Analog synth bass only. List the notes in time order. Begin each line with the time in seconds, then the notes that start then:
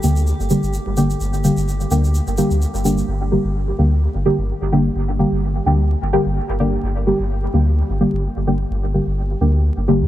0.04 D2
0.40 G1
0.63 G1
0.87 G1
1.21 G1
1.57 G1
1.91 D2
2.27 G1
2.51 D2
2.74 G1
3.08 G1
3.45 G1
3.79 D2
4.15 G1
4.38 G1
4.62 G1
4.96 G1
5.32 G1
5.66 D2
6.02 G1
6.26 G1
6.49 G1
6.83 G1
7.20 G1
7.54 D2
7.90 G1
8.13 G1
8.37 G1
8.71 G1
9.07 G1
9.41 D2
9.77 G1
10.01 G2